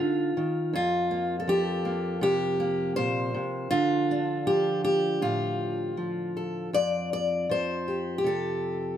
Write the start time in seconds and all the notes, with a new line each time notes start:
Already playing: D#4 F4
0.00 D3
0.37 D#3
0.73 F2 F4
1.11 A#3
1.40 A4
1.48 F3 G4
1.85 A#3
2.21 C3 G4
2.60 A#3
2.96 A#2 C5
3.34 C3
3.71 D3 F4
4.11 D4
4.47 F3 G4
4.85 G4
5.22 A2 F4
5.97 F3
6.37 A4
6.73 F2 D5
7.13 D5
7.49 F3 C5
7.88 G4
8.18 G4
8.24 C3 A4